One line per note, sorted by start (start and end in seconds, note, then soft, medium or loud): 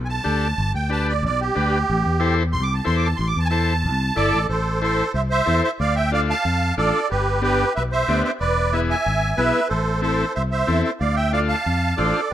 0.00 0.19 B1 loud
0.05 0.07 G#5 medium
0.09 0.72 A5 loud
0.24 0.52 D2 medium
0.24 0.48 D4 medium
0.24 0.48 G4 medium
0.24 0.48 A4 medium
0.58 0.71 G1 loud
0.74 1.24 D2 medium
0.74 0.90 G5 medium
0.90 1.13 D4 medium
0.90 1.13 G4 medium
0.90 1.14 B4 medium
0.90 1.07 A5 loud
1.09 1.24 D5 medium
1.23 1.49 B1 loud
1.23 1.40 D5 loud
1.40 2.35 G4 loud
1.55 1.82 D2 medium
1.55 1.78 D4 medium
1.55 1.78 G4 medium
1.55 1.79 B4 medium
1.90 2.02 A1 loud
2.06 2.55 E2 medium
2.20 2.43 E4 medium
2.20 2.43 A4 medium
2.20 2.43 C5 loud
2.53 2.80 C2 medium
2.53 2.64 C6 loud
2.63 2.74 D6 medium
2.74 2.85 A5 medium
2.85 3.12 E2 loud
2.85 3.08 E4 medium
2.85 3.08 A4 medium
2.85 3.08 C5 medium
2.85 2.96 C6 medium
2.97 3.07 D6 medium
3.05 3.17 A5 medium
3.16 3.32 A1 loud
3.16 3.28 C6 medium
3.27 3.39 D6 medium
3.36 3.86 E2 medium
3.36 3.48 A5 medium
3.45 3.48 G#5 medium
3.45 4.45 A5 loud
3.51 3.74 E4 medium
3.51 3.74 A4 medium
3.51 3.74 C5 medium
3.84 4.10 C2 medium
4.16 4.31 G1 medium
4.16 4.39 E4 medium
4.16 4.47 A4 medium
4.16 4.39 A4 medium
4.16 4.40 D5 loud
4.16 4.47 D5 loud
4.33 4.47 A1 medium
4.48 5.01 A1 medium
4.48 4.79 A4 medium
4.48 4.82 C5 medium
4.82 5.04 E4 medium
4.82 5.05 A4 medium
4.82 5.12 A4 medium
4.82 5.05 C5 medium
4.82 5.12 C5 medium
5.13 5.40 C2 medium
5.13 5.21 C5 medium
5.13 5.22 E5 medium
5.30 5.61 C5 medium
5.30 5.63 E5 loud
5.46 5.60 E2 loud
5.46 5.69 E4 medium
5.46 5.69 A4 medium
5.46 5.70 C5 medium
5.63 5.71 C5 medium
5.63 5.71 E5 medium
5.80 6.32 D2 medium
5.80 5.95 D5 medium
5.80 5.95 F5 loud
5.95 6.11 E5 medium
5.95 6.11 G5 loud
6.12 6.35 D4 medium
6.12 6.35 F4 medium
6.12 6.35 A4 medium
6.12 6.20 D5 medium
6.12 6.21 F5 loud
6.29 6.74 F5 medium
6.29 6.75 A5 loud
6.45 6.71 F2 medium
6.77 6.91 A1 loud
6.77 7.00 D4 medium
6.77 7.00 F4 medium
6.77 7.08 A4 medium
6.77 7.00 A4 medium
6.77 7.08 D5 loud
7.10 7.63 G1 loud
7.10 7.40 G4 medium
7.10 7.42 B4 medium
7.42 7.65 B3 medium
7.42 7.65 D4 medium
7.42 7.73 G4 medium
7.42 7.65 G4 medium
7.42 7.73 B4 loud
7.75 8.03 B1 medium
7.75 7.83 B4 medium
7.75 7.83 E5 loud
7.92 8.22 C5 medium
7.92 8.23 E5 loud
8.08 8.21 D2 loud
8.08 8.31 B3 medium
8.08 8.31 D4 medium
8.08 8.31 G4 medium
8.24 8.32 C5 medium
8.24 8.32 E5 medium
8.40 8.93 E1 medium
8.40 8.71 B4 medium
8.40 8.74 D5 medium
8.73 8.96 B3 medium
8.73 8.96 E4 medium
8.73 8.96 G#4 medium
8.73 8.80 B4 medium
8.73 8.80 E5 medium
8.90 9.35 E5 medium
8.90 9.40 G#5 loud
9.06 9.32 G#1 medium
9.37 9.51 B1 medium
9.37 9.60 B3 medium
9.37 9.61 E4 medium
9.37 9.61 G#4 medium
9.37 9.68 B4 medium
9.37 9.68 E5 loud
9.69 10.23 A1 medium
9.69 10.00 A4 medium
9.69 10.01 C5 medium
10.01 10.25 C4 medium
10.01 10.25 E4 medium
10.01 10.33 A4 medium
10.01 10.26 A4 medium
10.01 10.33 C5 medium
10.35 10.62 C2 medium
10.35 10.42 C5 medium
10.35 10.43 E5 medium
10.51 10.82 C5 medium
10.51 10.82 E5 medium
10.67 10.81 E2 loud
10.67 10.90 C4 medium
10.67 10.91 E4 medium
10.67 10.91 A4 medium
10.84 10.92 C5 medium
10.84 10.91 E5 medium
11.00 11.53 D2 loud
11.00 11.15 D5 medium
11.00 11.16 F5 medium
11.16 11.32 E5 medium
11.16 11.32 G5 loud
11.32 11.56 D4 medium
11.32 11.56 F4 medium
11.32 11.56 A4 medium
11.32 11.40 D5 medium
11.32 11.40 F5 medium
11.48 11.95 F5 medium
11.48 11.99 A5 loud
11.66 11.92 F2 medium
11.97 12.12 A1 loud
11.97 12.21 D4 medium
11.97 12.21 F4 medium
11.97 12.28 A4 medium
11.97 12.21 C5 medium
11.97 12.31 D5 medium